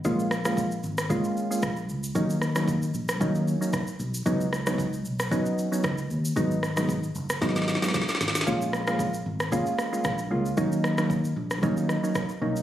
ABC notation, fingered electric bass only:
X:1
M:4/4
L:1/16
Q:"Swing 16ths" 1/4=114
K:Ebm
V:1 name="Fingered electric bass" clef=bass
B,,,6 A,,,3 z3 B,,,2 D,,2 | E,,6 B,,,2 E,,3 z3 C,,2 | D,,6 C,,3 z3 D,,2 E,,2 | A,,,6 G,,,2 A,,,3 z3 A,,,2 |
B,,,6 A,,,3 z3 B,,,2 D,,2 | E,,6 B,,,2 E,,3 z3 C,,2 |]